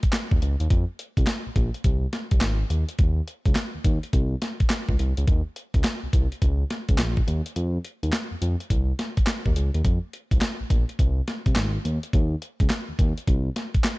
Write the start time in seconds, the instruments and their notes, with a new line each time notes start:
0.03 kick, closed hi-hat
0.13 snare, clap, closed hi-hat
0.31 analog synth bass D#2, kick
0.42 analog synth bass C#2, closed hi-hat
0.60 analog synth bass D#2, closed hi-hat
0.70 analog synth bass F2, kick, closed hi-hat
0.99 closed hi-hat
1.17 analog synth bass C2, kick, closed hi-hat
1.27 snare, clap, closed hi-hat
1.46 analog synth bass A#1
1.56 analog synth bass A#1, kick, closed hi-hat
1.74 closed hi-hat
1.84 analog synth bass C2, kick, closed hi-hat
2.13 snare, closed hi-hat
2.31 analog synth bass C2, kick, closed hi-hat
2.41 analog synth bass G#1, snare, clap, closed hi-hat
2.70 analog synth bass D#2, closed hi-hat
2.89 closed hi-hat
2.99 analog synth bass D#2, kick, closed hi-hat
3.28 closed hi-hat
3.45 analog synth bass C#2, kick, closed hi-hat
3.55 snare, clap, closed hi-hat
3.74 analog synth bass D#2
3.84 analog synth bass D#2, kick, closed hi-hat
4.03 closed hi-hat
4.13 analog synth bass C2, kick, closed hi-hat
4.42 snare, closed hi-hat
4.60 kick, closed hi-hat
4.70 snare, clap, closed hi-hat
4.89 analog synth bass C#2, kick
4.99 analog synth bass C2, closed hi-hat
5.17 analog synth bass C#2, closed hi-hat
5.28 analog synth bass D#2, kick, closed hi-hat
5.56 closed hi-hat
5.74 analog synth bass C#2, kick, closed hi-hat
5.84 snare, clap, closed hi-hat
6.03 analog synth bass C2
6.13 analog synth bass C2, kick, closed hi-hat
6.32 closed hi-hat
6.42 analog synth bass C#2, kick, closed hi-hat
6.70 snare, closed hi-hat
6.89 analog synth bass C#2, kick, closed hi-hat
6.98 analog synth bass A#1, snare, clap, closed hi-hat
7.17 kick
7.27 analog synth bass D#2, closed hi-hat
7.46 closed hi-hat
7.56 analog synth bass F2, closed hi-hat
7.85 closed hi-hat
8.03 analog synth bass D#2, closed hi-hat
8.13 snare, clap, closed hi-hat
8.31 analog synth bass F2
8.42 analog synth bass F2, closed hi-hat
8.60 closed hi-hat
8.70 analog synth bass C2, kick, closed hi-hat
8.99 snare, closed hi-hat
9.17 kick, closed hi-hat
9.27 snare, clap, closed hi-hat
9.46 analog synth bass D#2, kick
9.56 analog synth bass C#2, closed hi-hat
9.74 analog synth bass D#2, closed hi-hat
9.84 analog synth bass F2, kick, closed hi-hat
10.13 closed hi-hat
10.31 analog synth bass C2, kick, closed hi-hat
10.41 snare, clap, closed hi-hat
10.60 analog synth bass A#1
10.70 analog synth bass A#1, kick, closed hi-hat
10.89 closed hi-hat
10.99 analog synth bass C2, kick, closed hi-hat
11.28 snare, closed hi-hat
11.46 analog synth bass C2, kick, closed hi-hat
11.56 analog synth bass G#1, snare, clap, closed hi-hat
11.85 analog synth bass D#2, closed hi-hat
12.03 closed hi-hat
12.13 analog synth bass D#2, kick, closed hi-hat
12.42 closed hi-hat
12.60 analog synth bass C#2, kick, closed hi-hat
12.70 snare, clap, closed hi-hat
12.89 analog synth bass D#2
12.99 analog synth bass D#2, kick, closed hi-hat
13.18 closed hi-hat
13.27 analog synth bass C2, kick, closed hi-hat
13.56 snare, closed hi-hat
13.74 kick, closed hi-hat
13.84 snare, clap, closed hi-hat